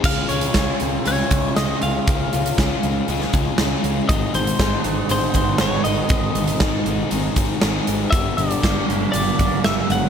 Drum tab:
CC |x---------------|----------------|----------------|----------------|
HH |--xxx-x-x-x-x-x-|x-xxx-x-x-x-x-x-|x-xxx-x-x-x-x-x-|x-xxx-x-x-x-x-x-|
SD |----o-------o---|----o----o--o---|----o-------o---|----o-------o---|
BD |o---o-----o-----|o---o-----o-----|o---o-----o-----|o---o-----o-----|

CC |----------------|
HH |x-xxx-x-x-x-x-x-|
SD |----o-------o---|
BD |o---o-----o-----|